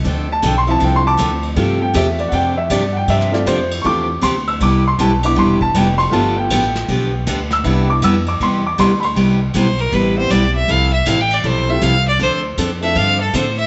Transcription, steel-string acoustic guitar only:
X:1
M:4/4
L:1/16
Q:"Swing" 1/4=158
K:C
V:1 name="Steel-string acoustic guitar"
[D,F,CDA]2 z2 [D,F,CDA] z3 [D,F,CDA]2 z2 [D,F,CDA] z3 | [C,F,CDG]2 z2 [C,F,CDG] z3 [C,F,CDG]2 z2 [C,F,CDG] z3 | [C,F,CDG]2 z2 [C,F,CDG] z3 [C,F,CDG]2 z2 [C,F,CDG] z3 | [C,G,B,EG]2 z2 [C,G,B,EG] z3 [C,G,B,EG]2 z2 [C,G,B,EG] z3 |
[D,F,B,DG]2 z2 [D,F,B,DG] z3 [D,F,B,DG]2 z2 [D,F,B,DG] z3 | [C,G,B,EG]2 z2 [C,G,B,EG] z3 [C,G,B,EG]2 z2 [C,G,B,EG] z3 | [C,G,B,EG]2 z2 [C,G,B,EG] z3 [C,G,B,EG]2 z2 [C,G,B,EG] z3 | [C,F,CEA]2 z2 [C,F,CEA] z3 [C,F,CEA]2 z2 [C,F,CEA] z3 |
[D,F,CDA]2 z2 [D,F,CDA] z3 [D,F,CDA]2 z2 [D,F,CDA] z3 |]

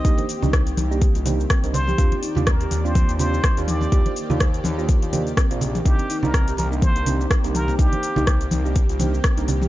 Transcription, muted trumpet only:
X:1
M:4/4
L:1/16
Q:"Swing 16ths" 1/4=124
K:Cm
V:1 name="Muted trumpet"
e2 z12 c2- | c2 z2 B3 c3 c4 d2- | d2 z12 z2 | G3 B3 B2 c4 z2 B2 |
G6 z8 z2 |]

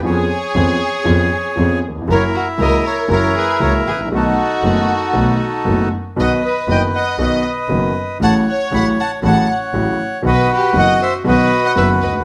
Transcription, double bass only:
X:1
M:4/4
L:1/8
Q:1/4=118
K:Bphr
V:1 name="Double bass" clef=bass
^E,, z E,, z E,, z E,, z | F,,, z ^C,, z F,,, z C,, A,,, | B,,, z F,,, z B,,, z F,,, z | B,,, z F,,, z B,,, z F,,, z |
A,,, z A,,, z A,,, z A,,, z | B,,, z F,,, z B,,, z F,,, D,, |]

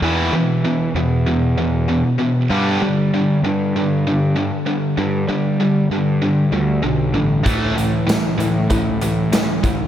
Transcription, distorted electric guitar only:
X:1
M:4/4
L:1/8
Q:1/4=97
K:G
V:1 name="Distorted electric guitar" clef=bass
[E,,B,,E,] [E,,B,,] [E,,B,,] [E,,B,,] [E,,B,,] [E,,B,,] [E,,B,,] [E,,B,,] | [G,,D,G,] [G,,D,] [G,,D,] [G,,D,] [G,,D,] [G,,D,] [G,,D,] [G,,D,] | [G,,D,] [G,,D,] [G,,D,] [G,,D,] [G,,D,] [G,,D,] [G,,D,] [G,,D,] | [A,,E,A,] [A,,E,] [A,,E,] [A,,E,] [A,,E,] [A,,E,] [A,,E,] [A,,E,] |]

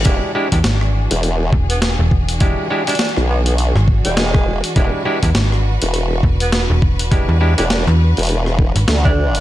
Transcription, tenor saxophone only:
X:1
M:4/4
L:1/16
Q:"Swing 16ths" 1/4=102
K:Clyd
V:1 name="Tenor saxophone"
z8 z3 B, B, z3 | z3 D D z B, B, z3 ^G,4 z | z8 z3 B, B, z3 | z3 D D z8 D3 |]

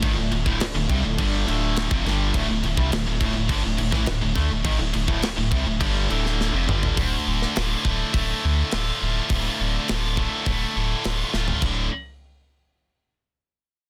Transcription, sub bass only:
X:1
M:4/4
L:1/16
Q:1/4=103
K:Dm
V:1 name="Sub bass" clef=bass
^G,,, D,,, D,,, D,,, D,,, D,,, C,, D,,, =G,,,2 D,,,3 F,,, G,,,2 | D,,, D,,, D,,, C,, D,,, D,,, D,,, D,,, G,,, D,,, D,,, A,,, D,,, D,,, D,, D,,, | ^G,,, D,,, D,,, D,,, D,,, D,,, C,, D,,, =G,,,2 D,,,3 F,,, G,,,2 | D,,,2 D,,,2 D,,,2 D,,,2 D,,,2 D,,2 D,,,2 D,,,2 |
D,,,2 D,,,2 D,,,4 D,,,2 D,,,2 D,,,2 D,,,2 | D,,,2 z12 z2 |]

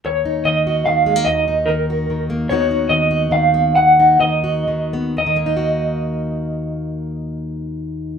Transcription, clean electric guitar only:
X:1
M:3/4
L:1/8
Q:1/4=138
K:Ebm
V:1 name="Clean electric guitar"
d2 e2 f2 | e2 B3 z | d2 e2 f2 | g2 e3 z |
e6- | e6 |]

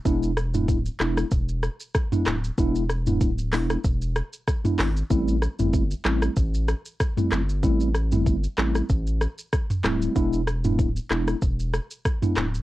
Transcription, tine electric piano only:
X:1
M:4/4
L:1/16
Q:"Swing 16ths" 1/4=95
K:Em
V:1 name="Tine electric piano"
[^G,B,DE]2 z [G,B,DE] z2 [G,B,DE]2 z4 z [G,B,DE] z2 | [^G,B,DE]2 z [G,B,DE] z2 [G,B,DE]2 z4 z [G,B,DE] z2 | [G,A,CE]2 z [G,A,CE] z2 [G,A,CE]2 z4 z [G,A,CE] z2 | [G,A,CE]2 z [G,A,CE] z2 [G,A,CE]2 z6 [G,A,CE]2 |
[^G,B,DE]2 z [G,B,DE] z2 [G,B,DE]2 z4 z [G,B,DE] z2 |]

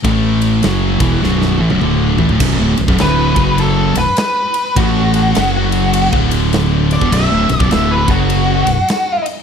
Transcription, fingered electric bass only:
X:1
M:4/4
L:1/16
Q:"Swing" 1/4=102
K:Bm
V:1 name="Fingered electric bass" clef=bass
A,,,4 F,,,2 E,,,2 B,,,,2 A,,, B,,,, D,,,2 A,,, D,,, | B,,,, D,,, B,,,, B,,,, D,,,2 F,,,4 B,,,, z4 z | A,,,4 F,,,4- F,,, D,,,6 E,,, | B,,,, D,,, B,,,, B,,,, D,,,2 F,,,4 B,,,, z4 z |]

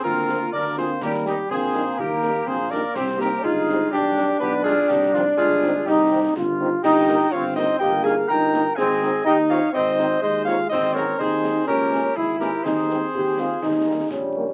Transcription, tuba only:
X:1
M:2/4
L:1/8
Q:1/4=124
K:Cm
V:1 name="Tuba" clef=bass
D,,2 D,,2 | E,,2 B,,,2 | E,,2 B,,,2 | C,,2 G,,,2 |
=B,,,2 B,,,2 | C,,2 G,,,2 | C,,2 G,,,2 | [K:Ab] G,,,2 G,,,2 |
G,,,2 G,,,2 | A,,,2 E,,2 | A,,,2 E,,2 | A,,,2 E,,2 |
D,,2 A,,,2 | E,,2 E,,2 | E,,2 B,,,2 |]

